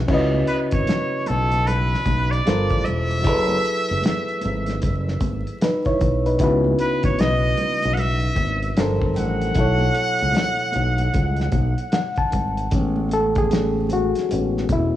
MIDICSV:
0, 0, Header, 1, 5, 480
1, 0, Start_track
1, 0, Tempo, 789474
1, 50, Time_signature, 4, 2, 24, 8
1, 9098, End_track
2, 0, Start_track
2, 0, Title_t, "Muted trumpet"
2, 0, Program_c, 0, 59
2, 292, Note_on_c, 0, 71, 74
2, 359, Note_off_c, 0, 71, 0
2, 445, Note_on_c, 0, 73, 77
2, 775, Note_on_c, 0, 69, 83
2, 785, Note_off_c, 0, 73, 0
2, 1014, Note_on_c, 0, 71, 96
2, 1023, Note_off_c, 0, 69, 0
2, 1405, Note_on_c, 0, 74, 97
2, 1414, Note_off_c, 0, 71, 0
2, 1733, Note_on_c, 0, 76, 108
2, 1742, Note_off_c, 0, 74, 0
2, 3172, Note_off_c, 0, 76, 0
2, 4138, Note_on_c, 0, 71, 89
2, 4274, Note_off_c, 0, 71, 0
2, 4287, Note_on_c, 0, 73, 86
2, 4379, Note_on_c, 0, 75, 110
2, 4388, Note_off_c, 0, 73, 0
2, 4827, Note_on_c, 0, 78, 59
2, 4836, Note_off_c, 0, 75, 0
2, 4860, Note_on_c, 0, 76, 101
2, 4869, Note_off_c, 0, 78, 0
2, 5335, Note_off_c, 0, 76, 0
2, 5573, Note_on_c, 0, 78, 119
2, 7468, Note_off_c, 0, 78, 0
2, 9098, End_track
3, 0, Start_track
3, 0, Title_t, "Reed electric piano"
3, 0, Program_c, 1, 4
3, 0, Control_c, 1, 64, 127
3, 0, Note_on_c, 1, 54, 59
3, 0, Note_on_c, 1, 61, 56
3, 0, Note_on_c, 1, 69, 54
3, 0, Note_on_c, 1, 76, 67
3, 43, Note_on_c, 1, 49, 66
3, 49, Note_off_c, 1, 61, 0
3, 49, Note_on_c, 1, 61, 70
3, 58, Control_c, 1, 64, 0
3, 62, Note_on_c, 1, 64, 67
3, 63, Note_off_c, 1, 54, 0
3, 63, Note_off_c, 1, 69, 0
3, 67, Note_off_c, 1, 76, 0
3, 69, Note_on_c, 1, 66, 58
3, 76, Note_on_c, 1, 71, 62
3, 86, Note_on_c, 1, 75, 85
3, 152, Control_c, 1, 64, 127
3, 1463, Note_off_c, 1, 49, 0
3, 1466, Note_off_c, 1, 61, 0
3, 1472, Note_off_c, 1, 64, 0
3, 1475, Note_off_c, 1, 66, 0
3, 1479, Note_off_c, 1, 71, 0
3, 1484, Note_off_c, 1, 75, 0
3, 1494, Note_on_c, 1, 55, 67
3, 1497, Control_c, 1, 64, 0
3, 1501, Note_on_c, 1, 65, 54
3, 1504, Note_on_c, 1, 69, 57
3, 1509, Note_on_c, 1, 70, 53
3, 1513, Note_on_c, 1, 72, 73
3, 1596, Control_c, 1, 64, 127
3, 1957, Note_on_c, 1, 54, 62
3, 1967, Note_on_c, 1, 64, 52
3, 1972, Note_off_c, 1, 55, 0
3, 1976, Note_off_c, 1, 65, 0
3, 1977, Note_off_c, 1, 69, 0
3, 1979, Control_c, 1, 64, 0
3, 1979, Note_on_c, 1, 68, 51
3, 1980, Note_off_c, 1, 70, 0
3, 1982, Note_off_c, 1, 72, 0
3, 1988, Note_on_c, 1, 69, 51
3, 1999, Note_on_c, 1, 71, 70
3, 2079, Control_c, 1, 64, 127
3, 3384, Note_off_c, 1, 64, 0
3, 3390, Note_off_c, 1, 68, 0
3, 3395, Note_off_c, 1, 69, 0
3, 3400, Note_off_c, 1, 71, 0
3, 3418, Note_on_c, 1, 71, 64
3, 3422, Note_on_c, 1, 63, 55
3, 3557, Note_off_c, 1, 71, 0
3, 3559, Note_off_c, 1, 63, 0
3, 3566, Note_on_c, 1, 73, 70
3, 3571, Note_on_c, 1, 64, 57
3, 3791, Note_off_c, 1, 73, 0
3, 3794, Note_off_c, 1, 64, 0
3, 3808, Note_on_c, 1, 71, 54
3, 3810, Note_on_c, 1, 63, 53
3, 3860, Note_off_c, 1, 54, 0
3, 3875, Note_on_c, 1, 49, 68
3, 3884, Note_on_c, 1, 61, 67
3, 3890, Note_on_c, 1, 59, 68
3, 3898, Note_on_c, 1, 64, 64
3, 3899, Control_c, 1, 64, 0
3, 3906, Note_on_c, 1, 66, 65
3, 3907, Note_off_c, 1, 71, 0
3, 3914, Note_on_c, 1, 71, 75
3, 3989, Control_c, 1, 64, 127
3, 4034, Note_off_c, 1, 63, 0
3, 5298, Note_off_c, 1, 49, 0
3, 5303, Note_off_c, 1, 61, 0
3, 5306, Note_off_c, 1, 59, 0
3, 5310, Note_off_c, 1, 64, 0
3, 5314, Note_off_c, 1, 66, 0
3, 5318, Note_off_c, 1, 71, 0
3, 5331, Note_on_c, 1, 55, 64
3, 5332, Note_on_c, 1, 62, 62
3, 5338, Note_on_c, 1, 53, 57
3, 5339, Control_c, 1, 64, 0
3, 5342, Note_on_c, 1, 69, 64
3, 5346, Note_on_c, 1, 70, 62
3, 5350, Note_on_c, 1, 72, 68
3, 5452, Control_c, 1, 64, 127
3, 5798, Note_on_c, 1, 47, 60
3, 5807, Note_on_c, 1, 54, 60
3, 5810, Note_off_c, 1, 55, 0
3, 5811, Note_off_c, 1, 62, 0
3, 5814, Note_off_c, 1, 53, 0
3, 5816, Note_off_c, 1, 69, 0
3, 5818, Note_off_c, 1, 70, 0
3, 5818, Note_on_c, 1, 64, 55
3, 5819, Control_c, 1, 64, 0
3, 5820, Note_off_c, 1, 72, 0
3, 5827, Note_on_c, 1, 69, 57
3, 5837, Note_on_c, 1, 73, 63
3, 5911, Control_c, 1, 64, 127
3, 7257, Note_on_c, 1, 78, 71
3, 7393, Note_off_c, 1, 78, 0
3, 7405, Note_on_c, 1, 81, 72
3, 7700, Note_off_c, 1, 47, 0
3, 7705, Note_off_c, 1, 54, 0
3, 7710, Note_off_c, 1, 64, 0
3, 7710, Note_off_c, 1, 81, 0
3, 7714, Note_off_c, 1, 69, 0
3, 7719, Note_off_c, 1, 73, 0
3, 7736, Note_on_c, 1, 56, 48
3, 7740, Control_c, 1, 64, 0
3, 7742, Note_on_c, 1, 59, 45
3, 7745, Note_on_c, 1, 61, 53
3, 7843, Control_c, 1, 64, 127
3, 7986, Note_on_c, 1, 69, 98
3, 8132, Note_off_c, 1, 69, 0
3, 8136, Note_on_c, 1, 68, 94
3, 8429, Note_off_c, 1, 56, 0
3, 8432, Note_off_c, 1, 59, 0
3, 8433, Note_off_c, 1, 61, 0
3, 8468, Note_off_c, 1, 68, 0
3, 8469, Note_on_c, 1, 66, 90
3, 8700, Note_on_c, 1, 56, 48
3, 8702, Note_on_c, 1, 59, 48
3, 8706, Note_on_c, 1, 61, 51
3, 8912, Note_off_c, 1, 56, 0
3, 8913, Note_off_c, 1, 59, 0
3, 8915, Note_off_c, 1, 61, 0
3, 8952, Note_on_c, 1, 64, 83
3, 8954, Note_off_c, 1, 66, 0
3, 9055, Note_off_c, 1, 64, 0
3, 9098, End_track
4, 0, Start_track
4, 0, Title_t, "Fingered electric bass"
4, 0, Program_c, 2, 33
4, 58, Note_on_c, 2, 37, 101
4, 253, Note_off_c, 2, 37, 0
4, 447, Note_on_c, 2, 32, 67
4, 518, Note_off_c, 2, 32, 0
4, 788, Note_on_c, 2, 35, 83
4, 1177, Note_off_c, 2, 35, 0
4, 1258, Note_on_c, 2, 35, 84
4, 1453, Note_off_c, 2, 35, 0
4, 1505, Note_on_c, 2, 31, 87
4, 1623, Note_off_c, 2, 31, 0
4, 1651, Note_on_c, 2, 33, 72
4, 1721, Note_off_c, 2, 33, 0
4, 1750, Note_on_c, 2, 28, 71
4, 1982, Note_off_c, 2, 28, 0
4, 1982, Note_on_c, 2, 30, 99
4, 2175, Note_off_c, 2, 30, 0
4, 2376, Note_on_c, 2, 30, 79
4, 2444, Note_off_c, 2, 30, 0
4, 2707, Note_on_c, 2, 32, 90
4, 2898, Note_off_c, 2, 32, 0
4, 2945, Note_on_c, 2, 30, 90
4, 3137, Note_off_c, 2, 30, 0
4, 3175, Note_on_c, 2, 32, 74
4, 3297, Note_off_c, 2, 32, 0
4, 3662, Note_on_c, 2, 35, 80
4, 3855, Note_off_c, 2, 35, 0
4, 3897, Note_on_c, 2, 37, 104
4, 4092, Note_off_c, 2, 37, 0
4, 4285, Note_on_c, 2, 32, 74
4, 4383, Note_off_c, 2, 32, 0
4, 4383, Note_on_c, 2, 35, 91
4, 4576, Note_off_c, 2, 35, 0
4, 4775, Note_on_c, 2, 35, 77
4, 5041, Note_off_c, 2, 35, 0
4, 5092, Note_on_c, 2, 32, 84
4, 5289, Note_off_c, 2, 32, 0
4, 5343, Note_on_c, 2, 31, 95
4, 5461, Note_off_c, 2, 31, 0
4, 5487, Note_on_c, 2, 31, 82
4, 5558, Note_off_c, 2, 31, 0
4, 5584, Note_on_c, 2, 33, 84
4, 5776, Note_off_c, 2, 33, 0
4, 5818, Note_on_c, 2, 35, 100
4, 6013, Note_off_c, 2, 35, 0
4, 6215, Note_on_c, 2, 37, 70
4, 6283, Note_off_c, 2, 37, 0
4, 6540, Note_on_c, 2, 35, 87
4, 6734, Note_off_c, 2, 35, 0
4, 6783, Note_on_c, 2, 37, 86
4, 6976, Note_off_c, 2, 37, 0
4, 7014, Note_on_c, 2, 35, 80
4, 7136, Note_off_c, 2, 35, 0
4, 7506, Note_on_c, 2, 32, 78
4, 7698, Note_off_c, 2, 32, 0
4, 7741, Note_on_c, 2, 33, 107
4, 8581, Note_off_c, 2, 33, 0
4, 8708, Note_on_c, 2, 33, 87
4, 8899, Note_off_c, 2, 33, 0
4, 8939, Note_on_c, 2, 28, 79
4, 9059, Note_off_c, 2, 28, 0
4, 9098, End_track
5, 0, Start_track
5, 0, Title_t, "Drums"
5, 49, Note_on_c, 9, 49, 99
5, 51, Note_on_c, 9, 36, 113
5, 51, Note_on_c, 9, 62, 27
5, 110, Note_off_c, 9, 49, 0
5, 112, Note_off_c, 9, 36, 0
5, 112, Note_off_c, 9, 62, 0
5, 203, Note_on_c, 9, 63, 52
5, 264, Note_off_c, 9, 63, 0
5, 282, Note_on_c, 9, 62, 29
5, 288, Note_on_c, 9, 42, 61
5, 343, Note_off_c, 9, 62, 0
5, 349, Note_off_c, 9, 42, 0
5, 433, Note_on_c, 9, 42, 53
5, 440, Note_on_c, 9, 36, 105
5, 494, Note_off_c, 9, 42, 0
5, 501, Note_off_c, 9, 36, 0
5, 527, Note_on_c, 9, 63, 55
5, 529, Note_on_c, 9, 42, 80
5, 543, Note_on_c, 9, 38, 104
5, 588, Note_off_c, 9, 63, 0
5, 590, Note_off_c, 9, 42, 0
5, 603, Note_off_c, 9, 38, 0
5, 767, Note_on_c, 9, 42, 58
5, 768, Note_on_c, 9, 62, 28
5, 768, Note_on_c, 9, 63, 56
5, 768, Note_on_c, 9, 64, 57
5, 828, Note_off_c, 9, 42, 0
5, 828, Note_off_c, 9, 62, 0
5, 828, Note_off_c, 9, 63, 0
5, 828, Note_off_c, 9, 64, 0
5, 920, Note_on_c, 9, 42, 49
5, 921, Note_on_c, 9, 63, 43
5, 981, Note_off_c, 9, 42, 0
5, 982, Note_off_c, 9, 63, 0
5, 1012, Note_on_c, 9, 62, 26
5, 1012, Note_on_c, 9, 64, 60
5, 1016, Note_on_c, 9, 42, 73
5, 1072, Note_off_c, 9, 62, 0
5, 1072, Note_off_c, 9, 64, 0
5, 1077, Note_off_c, 9, 42, 0
5, 1181, Note_on_c, 9, 38, 34
5, 1242, Note_off_c, 9, 38, 0
5, 1249, Note_on_c, 9, 62, 31
5, 1249, Note_on_c, 9, 63, 68
5, 1250, Note_on_c, 9, 36, 82
5, 1251, Note_on_c, 9, 42, 54
5, 1310, Note_off_c, 9, 62, 0
5, 1310, Note_off_c, 9, 63, 0
5, 1311, Note_off_c, 9, 36, 0
5, 1312, Note_off_c, 9, 42, 0
5, 1414, Note_on_c, 9, 42, 43
5, 1475, Note_off_c, 9, 42, 0
5, 1486, Note_on_c, 9, 62, 28
5, 1500, Note_on_c, 9, 42, 91
5, 1505, Note_on_c, 9, 38, 97
5, 1547, Note_off_c, 9, 62, 0
5, 1561, Note_off_c, 9, 42, 0
5, 1566, Note_off_c, 9, 38, 0
5, 1640, Note_on_c, 9, 42, 32
5, 1645, Note_on_c, 9, 36, 82
5, 1701, Note_off_c, 9, 42, 0
5, 1706, Note_off_c, 9, 36, 0
5, 1728, Note_on_c, 9, 62, 26
5, 1728, Note_on_c, 9, 64, 58
5, 1736, Note_on_c, 9, 42, 67
5, 1789, Note_off_c, 9, 62, 0
5, 1789, Note_off_c, 9, 64, 0
5, 1797, Note_off_c, 9, 42, 0
5, 1889, Note_on_c, 9, 42, 40
5, 1950, Note_off_c, 9, 42, 0
5, 1970, Note_on_c, 9, 42, 82
5, 1974, Note_on_c, 9, 36, 104
5, 2031, Note_off_c, 9, 42, 0
5, 2035, Note_off_c, 9, 36, 0
5, 2116, Note_on_c, 9, 63, 57
5, 2122, Note_on_c, 9, 42, 31
5, 2177, Note_off_c, 9, 63, 0
5, 2182, Note_off_c, 9, 42, 0
5, 2216, Note_on_c, 9, 42, 59
5, 2277, Note_off_c, 9, 42, 0
5, 2362, Note_on_c, 9, 42, 49
5, 2423, Note_off_c, 9, 42, 0
5, 2441, Note_on_c, 9, 63, 58
5, 2453, Note_on_c, 9, 42, 80
5, 2466, Note_on_c, 9, 38, 112
5, 2502, Note_off_c, 9, 63, 0
5, 2514, Note_off_c, 9, 42, 0
5, 2527, Note_off_c, 9, 38, 0
5, 2604, Note_on_c, 9, 42, 30
5, 2665, Note_off_c, 9, 42, 0
5, 2683, Note_on_c, 9, 63, 55
5, 2683, Note_on_c, 9, 64, 61
5, 2684, Note_on_c, 9, 42, 57
5, 2744, Note_off_c, 9, 42, 0
5, 2744, Note_off_c, 9, 63, 0
5, 2744, Note_off_c, 9, 64, 0
5, 2836, Note_on_c, 9, 42, 48
5, 2837, Note_on_c, 9, 63, 43
5, 2849, Note_on_c, 9, 38, 31
5, 2896, Note_off_c, 9, 42, 0
5, 2898, Note_off_c, 9, 63, 0
5, 2910, Note_off_c, 9, 38, 0
5, 2929, Note_on_c, 9, 42, 70
5, 2929, Note_on_c, 9, 64, 67
5, 2937, Note_on_c, 9, 36, 92
5, 2990, Note_off_c, 9, 42, 0
5, 2990, Note_off_c, 9, 64, 0
5, 2998, Note_off_c, 9, 36, 0
5, 3090, Note_on_c, 9, 38, 32
5, 3151, Note_off_c, 9, 38, 0
5, 3165, Note_on_c, 9, 42, 61
5, 3166, Note_on_c, 9, 36, 90
5, 3170, Note_on_c, 9, 62, 33
5, 3170, Note_on_c, 9, 63, 71
5, 3226, Note_off_c, 9, 42, 0
5, 3227, Note_off_c, 9, 36, 0
5, 3231, Note_off_c, 9, 62, 0
5, 3231, Note_off_c, 9, 63, 0
5, 3326, Note_on_c, 9, 42, 35
5, 3387, Note_off_c, 9, 42, 0
5, 3414, Note_on_c, 9, 42, 87
5, 3419, Note_on_c, 9, 38, 109
5, 3475, Note_off_c, 9, 42, 0
5, 3480, Note_off_c, 9, 38, 0
5, 3557, Note_on_c, 9, 42, 28
5, 3562, Note_on_c, 9, 36, 76
5, 3618, Note_off_c, 9, 42, 0
5, 3623, Note_off_c, 9, 36, 0
5, 3644, Note_on_c, 9, 62, 24
5, 3644, Note_on_c, 9, 64, 54
5, 3653, Note_on_c, 9, 42, 66
5, 3656, Note_on_c, 9, 36, 99
5, 3705, Note_off_c, 9, 62, 0
5, 3705, Note_off_c, 9, 64, 0
5, 3714, Note_off_c, 9, 42, 0
5, 3717, Note_off_c, 9, 36, 0
5, 3807, Note_on_c, 9, 42, 41
5, 3867, Note_off_c, 9, 42, 0
5, 3885, Note_on_c, 9, 42, 85
5, 3891, Note_on_c, 9, 36, 113
5, 3946, Note_off_c, 9, 42, 0
5, 3951, Note_off_c, 9, 36, 0
5, 4039, Note_on_c, 9, 63, 58
5, 4100, Note_off_c, 9, 63, 0
5, 4126, Note_on_c, 9, 42, 72
5, 4187, Note_off_c, 9, 42, 0
5, 4274, Note_on_c, 9, 42, 52
5, 4278, Note_on_c, 9, 36, 106
5, 4335, Note_off_c, 9, 42, 0
5, 4339, Note_off_c, 9, 36, 0
5, 4360, Note_on_c, 9, 63, 59
5, 4369, Note_on_c, 9, 42, 78
5, 4382, Note_on_c, 9, 38, 115
5, 4421, Note_off_c, 9, 63, 0
5, 4430, Note_off_c, 9, 42, 0
5, 4443, Note_off_c, 9, 38, 0
5, 4606, Note_on_c, 9, 42, 56
5, 4607, Note_on_c, 9, 62, 27
5, 4607, Note_on_c, 9, 63, 61
5, 4607, Note_on_c, 9, 64, 61
5, 4667, Note_off_c, 9, 42, 0
5, 4668, Note_off_c, 9, 62, 0
5, 4668, Note_off_c, 9, 63, 0
5, 4668, Note_off_c, 9, 64, 0
5, 4751, Note_on_c, 9, 63, 46
5, 4758, Note_on_c, 9, 42, 49
5, 4812, Note_off_c, 9, 63, 0
5, 4819, Note_off_c, 9, 42, 0
5, 4843, Note_on_c, 9, 62, 31
5, 4843, Note_on_c, 9, 64, 62
5, 4847, Note_on_c, 9, 42, 69
5, 4904, Note_off_c, 9, 62, 0
5, 4904, Note_off_c, 9, 64, 0
5, 4908, Note_off_c, 9, 42, 0
5, 4984, Note_on_c, 9, 42, 37
5, 5045, Note_off_c, 9, 42, 0
5, 5078, Note_on_c, 9, 63, 63
5, 5084, Note_on_c, 9, 42, 59
5, 5085, Note_on_c, 9, 36, 88
5, 5139, Note_off_c, 9, 63, 0
5, 5145, Note_off_c, 9, 42, 0
5, 5146, Note_off_c, 9, 36, 0
5, 5243, Note_on_c, 9, 42, 36
5, 5304, Note_off_c, 9, 42, 0
5, 5315, Note_on_c, 9, 62, 27
5, 5329, Note_on_c, 9, 42, 85
5, 5334, Note_on_c, 9, 38, 111
5, 5376, Note_off_c, 9, 62, 0
5, 5390, Note_off_c, 9, 42, 0
5, 5395, Note_off_c, 9, 38, 0
5, 5480, Note_on_c, 9, 36, 79
5, 5541, Note_off_c, 9, 36, 0
5, 5557, Note_on_c, 9, 62, 28
5, 5557, Note_on_c, 9, 64, 50
5, 5569, Note_on_c, 9, 42, 74
5, 5618, Note_off_c, 9, 62, 0
5, 5618, Note_off_c, 9, 64, 0
5, 5630, Note_off_c, 9, 42, 0
5, 5724, Note_on_c, 9, 42, 47
5, 5784, Note_off_c, 9, 42, 0
5, 5802, Note_on_c, 9, 42, 80
5, 5809, Note_on_c, 9, 36, 108
5, 5863, Note_off_c, 9, 42, 0
5, 5870, Note_off_c, 9, 36, 0
5, 5948, Note_on_c, 9, 63, 60
5, 5951, Note_on_c, 9, 42, 32
5, 6009, Note_off_c, 9, 63, 0
5, 6012, Note_off_c, 9, 42, 0
5, 6034, Note_on_c, 9, 62, 30
5, 6047, Note_on_c, 9, 42, 73
5, 6095, Note_off_c, 9, 62, 0
5, 6108, Note_off_c, 9, 42, 0
5, 6196, Note_on_c, 9, 42, 51
5, 6256, Note_off_c, 9, 42, 0
5, 6282, Note_on_c, 9, 62, 28
5, 6282, Note_on_c, 9, 63, 62
5, 6290, Note_on_c, 9, 42, 79
5, 6303, Note_on_c, 9, 38, 126
5, 6342, Note_off_c, 9, 62, 0
5, 6342, Note_off_c, 9, 63, 0
5, 6351, Note_off_c, 9, 42, 0
5, 6364, Note_off_c, 9, 38, 0
5, 6441, Note_on_c, 9, 42, 32
5, 6501, Note_off_c, 9, 42, 0
5, 6519, Note_on_c, 9, 62, 28
5, 6519, Note_on_c, 9, 63, 59
5, 6519, Note_on_c, 9, 64, 62
5, 6524, Note_on_c, 9, 42, 60
5, 6580, Note_off_c, 9, 62, 0
5, 6580, Note_off_c, 9, 63, 0
5, 6580, Note_off_c, 9, 64, 0
5, 6585, Note_off_c, 9, 42, 0
5, 6672, Note_on_c, 9, 63, 45
5, 6677, Note_on_c, 9, 42, 48
5, 6733, Note_off_c, 9, 63, 0
5, 6738, Note_off_c, 9, 42, 0
5, 6766, Note_on_c, 9, 64, 61
5, 6771, Note_on_c, 9, 42, 73
5, 6777, Note_on_c, 9, 36, 99
5, 6827, Note_off_c, 9, 64, 0
5, 6831, Note_off_c, 9, 42, 0
5, 6837, Note_off_c, 9, 36, 0
5, 6909, Note_on_c, 9, 42, 35
5, 6933, Note_on_c, 9, 38, 35
5, 6970, Note_off_c, 9, 42, 0
5, 6994, Note_off_c, 9, 38, 0
5, 7003, Note_on_c, 9, 42, 56
5, 7003, Note_on_c, 9, 62, 31
5, 7003, Note_on_c, 9, 63, 78
5, 7006, Note_on_c, 9, 36, 79
5, 7063, Note_off_c, 9, 42, 0
5, 7064, Note_off_c, 9, 62, 0
5, 7064, Note_off_c, 9, 63, 0
5, 7067, Note_off_c, 9, 36, 0
5, 7163, Note_on_c, 9, 42, 38
5, 7224, Note_off_c, 9, 42, 0
5, 7248, Note_on_c, 9, 42, 91
5, 7253, Note_on_c, 9, 38, 110
5, 7308, Note_off_c, 9, 42, 0
5, 7313, Note_off_c, 9, 38, 0
5, 7393, Note_on_c, 9, 42, 30
5, 7403, Note_on_c, 9, 36, 79
5, 7454, Note_off_c, 9, 42, 0
5, 7464, Note_off_c, 9, 36, 0
5, 7482, Note_on_c, 9, 62, 26
5, 7482, Note_on_c, 9, 64, 53
5, 7492, Note_on_c, 9, 42, 68
5, 7498, Note_on_c, 9, 36, 79
5, 7543, Note_off_c, 9, 62, 0
5, 7543, Note_off_c, 9, 64, 0
5, 7553, Note_off_c, 9, 42, 0
5, 7559, Note_off_c, 9, 36, 0
5, 7644, Note_on_c, 9, 42, 40
5, 7705, Note_off_c, 9, 42, 0
5, 7725, Note_on_c, 9, 62, 26
5, 7729, Note_on_c, 9, 42, 81
5, 7734, Note_on_c, 9, 36, 103
5, 7786, Note_off_c, 9, 62, 0
5, 7790, Note_off_c, 9, 42, 0
5, 7795, Note_off_c, 9, 36, 0
5, 7878, Note_on_c, 9, 63, 54
5, 7939, Note_off_c, 9, 63, 0
5, 7961, Note_on_c, 9, 62, 29
5, 7973, Note_on_c, 9, 42, 63
5, 8022, Note_off_c, 9, 62, 0
5, 8034, Note_off_c, 9, 42, 0
5, 8119, Note_on_c, 9, 42, 47
5, 8123, Note_on_c, 9, 36, 100
5, 8180, Note_off_c, 9, 42, 0
5, 8184, Note_off_c, 9, 36, 0
5, 8203, Note_on_c, 9, 63, 60
5, 8213, Note_on_c, 9, 42, 79
5, 8227, Note_on_c, 9, 38, 121
5, 8264, Note_off_c, 9, 63, 0
5, 8274, Note_off_c, 9, 42, 0
5, 8287, Note_off_c, 9, 38, 0
5, 8445, Note_on_c, 9, 62, 27
5, 8445, Note_on_c, 9, 63, 64
5, 8445, Note_on_c, 9, 64, 56
5, 8449, Note_on_c, 9, 42, 58
5, 8506, Note_off_c, 9, 62, 0
5, 8506, Note_off_c, 9, 63, 0
5, 8506, Note_off_c, 9, 64, 0
5, 8510, Note_off_c, 9, 42, 0
5, 8605, Note_on_c, 9, 42, 48
5, 8618, Note_on_c, 9, 38, 27
5, 8666, Note_off_c, 9, 42, 0
5, 8679, Note_off_c, 9, 38, 0
5, 8688, Note_on_c, 9, 62, 28
5, 8688, Note_on_c, 9, 64, 59
5, 8699, Note_on_c, 9, 42, 81
5, 8749, Note_off_c, 9, 62, 0
5, 8749, Note_off_c, 9, 64, 0
5, 8759, Note_off_c, 9, 42, 0
5, 8860, Note_on_c, 9, 38, 31
5, 8921, Note_off_c, 9, 38, 0
5, 8931, Note_on_c, 9, 36, 82
5, 8931, Note_on_c, 9, 42, 55
5, 8931, Note_on_c, 9, 62, 35
5, 8931, Note_on_c, 9, 63, 73
5, 8991, Note_off_c, 9, 62, 0
5, 8991, Note_off_c, 9, 63, 0
5, 8992, Note_off_c, 9, 36, 0
5, 8992, Note_off_c, 9, 42, 0
5, 9098, End_track
0, 0, End_of_file